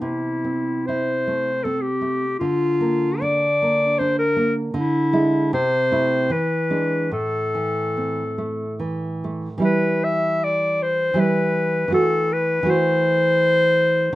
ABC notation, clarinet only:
X:1
M:3/4
L:1/16
Q:1/4=77
K:Am
V:1 name="Clarinet"
E4 c4 A G3 | F4 d4 c _B2 z | E4 c4 B4 | A8 z4 |
[K:Em] B2 e2 d2 c2 B4 | A2 B2 c8 |]